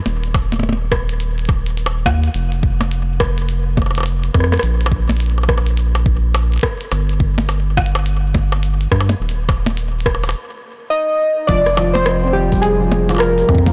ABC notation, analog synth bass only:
X:1
M:4/4
L:1/8
Q:"Swing 16ths" 1/4=105
K:Fdor
V:1 name="Analog synth bass" clef=bass
E,,,6- E,,, E,, | F,,,6- F,,, F,, | B,,,6- B,,, z | G,,,6- G,,, G,, |
E,,,4 z4 | F,,,6- F,,, F,, |]